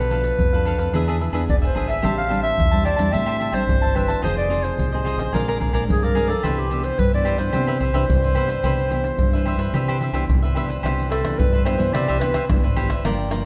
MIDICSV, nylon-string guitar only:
0, 0, Header, 1, 2, 480
1, 0, Start_track
1, 0, Key_signature, 0, "major"
1, 0, Tempo, 550459
1, 1779, Time_signature, 4, 2, 24, 8
1, 11729, End_track
2, 0, Start_track
2, 0, Title_t, "Nylon-string guitar"
2, 0, Program_c, 0, 24
2, 0, Note_on_c, 0, 47, 54
2, 105, Note_on_c, 0, 53, 52
2, 110, Note_on_c, 0, 57, 55
2, 114, Note_on_c, 0, 62, 58
2, 314, Note_off_c, 0, 47, 0
2, 327, Note_off_c, 0, 53, 0
2, 330, Note_off_c, 0, 62, 0
2, 331, Note_off_c, 0, 57, 0
2, 355, Note_on_c, 0, 47, 51
2, 463, Note_on_c, 0, 53, 58
2, 467, Note_on_c, 0, 57, 55
2, 476, Note_on_c, 0, 62, 62
2, 783, Note_off_c, 0, 53, 0
2, 785, Note_off_c, 0, 57, 0
2, 789, Note_off_c, 0, 62, 0
2, 803, Note_off_c, 0, 47, 0
2, 827, Note_on_c, 0, 52, 53
2, 827, Note_on_c, 0, 59, 56
2, 831, Note_on_c, 0, 62, 51
2, 832, Note_on_c, 0, 68, 54
2, 1047, Note_off_c, 0, 59, 0
2, 1050, Note_off_c, 0, 62, 0
2, 1050, Note_off_c, 0, 68, 0
2, 1170, Note_on_c, 0, 59, 58
2, 1174, Note_on_c, 0, 62, 59
2, 1176, Note_on_c, 0, 68, 61
2, 1279, Note_off_c, 0, 52, 0
2, 1302, Note_on_c, 0, 47, 48
2, 1496, Note_off_c, 0, 59, 0
2, 1498, Note_off_c, 0, 62, 0
2, 1499, Note_off_c, 0, 68, 0
2, 1526, Note_on_c, 0, 59, 50
2, 1530, Note_on_c, 0, 62, 55
2, 1534, Note_on_c, 0, 68, 60
2, 1734, Note_off_c, 0, 59, 0
2, 1736, Note_off_c, 0, 62, 0
2, 1737, Note_off_c, 0, 68, 0
2, 1756, Note_off_c, 0, 47, 0
2, 1764, Note_on_c, 0, 45, 52
2, 1764, Note_on_c, 0, 55, 50
2, 1766, Note_on_c, 0, 60, 47
2, 1769, Note_on_c, 0, 62, 57
2, 1972, Note_off_c, 0, 55, 0
2, 1972, Note_off_c, 0, 60, 0
2, 1973, Note_off_c, 0, 62, 0
2, 2004, Note_on_c, 0, 55, 60
2, 2009, Note_on_c, 0, 60, 53
2, 2012, Note_on_c, 0, 62, 59
2, 2228, Note_off_c, 0, 45, 0
2, 2232, Note_on_c, 0, 52, 52
2, 2236, Note_off_c, 0, 55, 0
2, 2239, Note_off_c, 0, 60, 0
2, 2240, Note_off_c, 0, 62, 0
2, 2377, Note_on_c, 0, 55, 58
2, 2380, Note_on_c, 0, 60, 59
2, 2382, Note_on_c, 0, 62, 61
2, 2579, Note_off_c, 0, 55, 0
2, 2581, Note_off_c, 0, 60, 0
2, 2581, Note_off_c, 0, 62, 0
2, 2601, Note_on_c, 0, 55, 62
2, 2605, Note_on_c, 0, 60, 57
2, 2609, Note_on_c, 0, 62, 64
2, 2691, Note_off_c, 0, 55, 0
2, 2693, Note_off_c, 0, 60, 0
2, 2695, Note_off_c, 0, 62, 0
2, 2701, Note_off_c, 0, 52, 0
2, 2738, Note_on_c, 0, 55, 50
2, 2739, Note_on_c, 0, 45, 53
2, 2742, Note_on_c, 0, 60, 55
2, 2743, Note_on_c, 0, 62, 59
2, 3059, Note_off_c, 0, 55, 0
2, 3061, Note_off_c, 0, 60, 0
2, 3062, Note_off_c, 0, 62, 0
2, 3086, Note_on_c, 0, 55, 57
2, 3091, Note_on_c, 0, 60, 64
2, 3091, Note_on_c, 0, 62, 64
2, 3195, Note_off_c, 0, 45, 0
2, 3213, Note_on_c, 0, 52, 48
2, 3414, Note_off_c, 0, 55, 0
2, 3414, Note_off_c, 0, 60, 0
2, 3416, Note_off_c, 0, 62, 0
2, 3437, Note_on_c, 0, 55, 45
2, 3443, Note_on_c, 0, 60, 44
2, 3448, Note_on_c, 0, 62, 57
2, 3649, Note_off_c, 0, 55, 0
2, 3653, Note_off_c, 0, 60, 0
2, 3653, Note_off_c, 0, 62, 0
2, 3671, Note_off_c, 0, 52, 0
2, 3687, Note_on_c, 0, 53, 55
2, 3691, Note_on_c, 0, 63, 48
2, 3692, Note_on_c, 0, 60, 55
2, 3695, Note_on_c, 0, 68, 66
2, 3895, Note_off_c, 0, 60, 0
2, 3896, Note_off_c, 0, 63, 0
2, 3896, Note_off_c, 0, 68, 0
2, 3920, Note_on_c, 0, 60, 50
2, 3922, Note_on_c, 0, 63, 53
2, 3929, Note_on_c, 0, 68, 59
2, 4148, Note_off_c, 0, 53, 0
2, 4175, Note_on_c, 0, 48, 55
2, 4250, Note_off_c, 0, 60, 0
2, 4250, Note_off_c, 0, 63, 0
2, 4254, Note_off_c, 0, 68, 0
2, 4305, Note_on_c, 0, 60, 54
2, 4309, Note_on_c, 0, 63, 58
2, 4312, Note_on_c, 0, 68, 64
2, 4622, Note_off_c, 0, 60, 0
2, 4624, Note_off_c, 0, 63, 0
2, 4625, Note_off_c, 0, 68, 0
2, 4632, Note_off_c, 0, 48, 0
2, 4656, Note_on_c, 0, 46, 57
2, 4657, Note_on_c, 0, 56, 51
2, 4660, Note_on_c, 0, 62, 62
2, 4661, Note_on_c, 0, 60, 55
2, 4978, Note_off_c, 0, 56, 0
2, 4979, Note_off_c, 0, 60, 0
2, 4980, Note_off_c, 0, 62, 0
2, 5002, Note_on_c, 0, 56, 55
2, 5006, Note_on_c, 0, 60, 62
2, 5009, Note_on_c, 0, 62, 64
2, 5113, Note_off_c, 0, 46, 0
2, 5137, Note_on_c, 0, 53, 53
2, 5331, Note_off_c, 0, 56, 0
2, 5333, Note_off_c, 0, 60, 0
2, 5333, Note_off_c, 0, 62, 0
2, 5366, Note_on_c, 0, 56, 49
2, 5370, Note_on_c, 0, 60, 52
2, 5374, Note_on_c, 0, 62, 55
2, 5512, Note_off_c, 0, 56, 0
2, 5514, Note_off_c, 0, 60, 0
2, 5516, Note_off_c, 0, 62, 0
2, 5592, Note_off_c, 0, 53, 0
2, 5615, Note_on_c, 0, 52, 55
2, 5619, Note_on_c, 0, 48, 54
2, 5624, Note_on_c, 0, 59, 47
2, 5625, Note_on_c, 0, 62, 58
2, 5817, Note_off_c, 0, 52, 0
2, 5820, Note_off_c, 0, 59, 0
2, 5822, Note_off_c, 0, 62, 0
2, 5856, Note_on_c, 0, 52, 49
2, 5861, Note_on_c, 0, 59, 53
2, 5863, Note_on_c, 0, 62, 62
2, 6074, Note_off_c, 0, 48, 0
2, 6082, Note_off_c, 0, 52, 0
2, 6083, Note_off_c, 0, 59, 0
2, 6085, Note_off_c, 0, 62, 0
2, 6096, Note_on_c, 0, 43, 55
2, 6223, Note_on_c, 0, 52, 56
2, 6228, Note_on_c, 0, 59, 53
2, 6233, Note_on_c, 0, 62, 67
2, 6541, Note_off_c, 0, 52, 0
2, 6543, Note_off_c, 0, 59, 0
2, 6546, Note_off_c, 0, 62, 0
2, 6552, Note_off_c, 0, 43, 0
2, 6571, Note_on_c, 0, 48, 51
2, 6577, Note_on_c, 0, 52, 46
2, 6579, Note_on_c, 0, 59, 56
2, 6584, Note_on_c, 0, 62, 61
2, 6800, Note_off_c, 0, 52, 0
2, 6803, Note_off_c, 0, 59, 0
2, 6805, Note_off_c, 0, 62, 0
2, 6921, Note_on_c, 0, 52, 52
2, 6930, Note_on_c, 0, 62, 66
2, 7030, Note_off_c, 0, 48, 0
2, 7045, Note_on_c, 0, 43, 54
2, 7250, Note_off_c, 0, 52, 0
2, 7255, Note_off_c, 0, 62, 0
2, 7279, Note_on_c, 0, 52, 51
2, 7283, Note_on_c, 0, 59, 52
2, 7289, Note_on_c, 0, 62, 54
2, 7428, Note_off_c, 0, 52, 0
2, 7431, Note_off_c, 0, 59, 0
2, 7432, Note_off_c, 0, 62, 0
2, 7506, Note_off_c, 0, 43, 0
2, 7532, Note_on_c, 0, 48, 50
2, 7537, Note_on_c, 0, 59, 50
2, 7539, Note_on_c, 0, 52, 55
2, 7541, Note_on_c, 0, 62, 52
2, 7677, Note_off_c, 0, 52, 0
2, 7678, Note_off_c, 0, 59, 0
2, 7678, Note_off_c, 0, 62, 0
2, 7766, Note_on_c, 0, 52, 57
2, 7770, Note_on_c, 0, 59, 59
2, 7774, Note_on_c, 0, 62, 58
2, 7991, Note_off_c, 0, 48, 0
2, 7996, Note_off_c, 0, 52, 0
2, 7998, Note_off_c, 0, 59, 0
2, 7999, Note_off_c, 0, 62, 0
2, 8018, Note_on_c, 0, 43, 51
2, 8136, Note_on_c, 0, 52, 64
2, 8145, Note_on_c, 0, 62, 65
2, 8458, Note_off_c, 0, 52, 0
2, 8462, Note_off_c, 0, 62, 0
2, 8473, Note_off_c, 0, 43, 0
2, 8489, Note_on_c, 0, 52, 50
2, 8492, Note_on_c, 0, 48, 53
2, 8498, Note_on_c, 0, 62, 58
2, 8814, Note_off_c, 0, 52, 0
2, 8819, Note_off_c, 0, 62, 0
2, 8840, Note_on_c, 0, 52, 60
2, 8842, Note_on_c, 0, 59, 60
2, 8843, Note_on_c, 0, 62, 62
2, 8950, Note_off_c, 0, 48, 0
2, 8975, Note_on_c, 0, 43, 52
2, 9169, Note_off_c, 0, 59, 0
2, 9170, Note_off_c, 0, 52, 0
2, 9171, Note_off_c, 0, 62, 0
2, 9200, Note_on_c, 0, 52, 52
2, 9205, Note_on_c, 0, 59, 50
2, 9211, Note_on_c, 0, 62, 57
2, 9349, Note_off_c, 0, 52, 0
2, 9352, Note_off_c, 0, 59, 0
2, 9354, Note_off_c, 0, 62, 0
2, 9432, Note_off_c, 0, 43, 0
2, 9438, Note_on_c, 0, 48, 58
2, 9443, Note_on_c, 0, 52, 54
2, 9445, Note_on_c, 0, 59, 54
2, 9448, Note_on_c, 0, 62, 61
2, 9674, Note_off_c, 0, 52, 0
2, 9676, Note_off_c, 0, 59, 0
2, 9677, Note_off_c, 0, 62, 0
2, 9796, Note_on_c, 0, 52, 59
2, 9798, Note_on_c, 0, 59, 58
2, 9801, Note_on_c, 0, 62, 70
2, 9904, Note_off_c, 0, 48, 0
2, 9927, Note_on_c, 0, 43, 54
2, 10128, Note_off_c, 0, 59, 0
2, 10129, Note_off_c, 0, 52, 0
2, 10130, Note_off_c, 0, 62, 0
2, 10162, Note_on_c, 0, 52, 58
2, 10165, Note_on_c, 0, 59, 60
2, 10169, Note_on_c, 0, 62, 68
2, 10251, Note_off_c, 0, 59, 0
2, 10252, Note_off_c, 0, 52, 0
2, 10254, Note_off_c, 0, 62, 0
2, 10276, Note_on_c, 0, 52, 62
2, 10280, Note_on_c, 0, 59, 65
2, 10284, Note_on_c, 0, 62, 69
2, 10388, Note_off_c, 0, 43, 0
2, 10411, Note_on_c, 0, 48, 58
2, 10608, Note_off_c, 0, 52, 0
2, 10610, Note_off_c, 0, 59, 0
2, 10612, Note_off_c, 0, 62, 0
2, 10649, Note_on_c, 0, 52, 64
2, 10653, Note_on_c, 0, 59, 59
2, 10656, Note_on_c, 0, 62, 60
2, 10794, Note_off_c, 0, 52, 0
2, 10796, Note_off_c, 0, 59, 0
2, 10797, Note_off_c, 0, 62, 0
2, 10870, Note_off_c, 0, 48, 0
2, 10887, Note_on_c, 0, 43, 55
2, 10890, Note_on_c, 0, 52, 59
2, 10896, Note_on_c, 0, 59, 53
2, 10896, Note_on_c, 0, 62, 61
2, 11034, Note_off_c, 0, 52, 0
2, 11035, Note_off_c, 0, 59, 0
2, 11038, Note_off_c, 0, 62, 0
2, 11125, Note_on_c, 0, 52, 59
2, 11129, Note_on_c, 0, 59, 59
2, 11129, Note_on_c, 0, 62, 62
2, 11272, Note_off_c, 0, 52, 0
2, 11273, Note_off_c, 0, 59, 0
2, 11274, Note_off_c, 0, 62, 0
2, 11349, Note_off_c, 0, 43, 0
2, 11369, Note_on_c, 0, 43, 59
2, 11372, Note_on_c, 0, 53, 58
2, 11373, Note_on_c, 0, 58, 58
2, 11382, Note_on_c, 0, 62, 64
2, 11576, Note_off_c, 0, 53, 0
2, 11576, Note_off_c, 0, 58, 0
2, 11581, Note_off_c, 0, 62, 0
2, 11603, Note_on_c, 0, 53, 54
2, 11607, Note_on_c, 0, 58, 61
2, 11611, Note_on_c, 0, 62, 58
2, 11682, Note_off_c, 0, 53, 0
2, 11684, Note_off_c, 0, 58, 0
2, 11686, Note_off_c, 0, 62, 0
2, 11729, Note_off_c, 0, 43, 0
2, 11729, End_track
0, 0, End_of_file